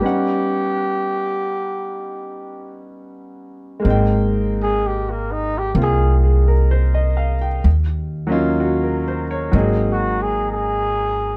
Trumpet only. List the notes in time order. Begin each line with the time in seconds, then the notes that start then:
Already playing: G4
4.63 G#4
4.87 G4
5.11 A#3
5.32 D#4
5.58 G4
5.82 G#4
9.92 F#4
10.22 G#4
10.52 G#4